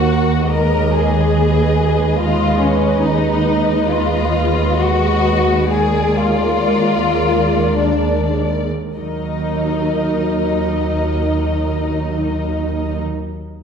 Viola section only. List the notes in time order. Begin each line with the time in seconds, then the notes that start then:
Already playing: A#3 A#4
0.51 G#3 B4
5.71 G#3 A#4
8.97 F#3 A#4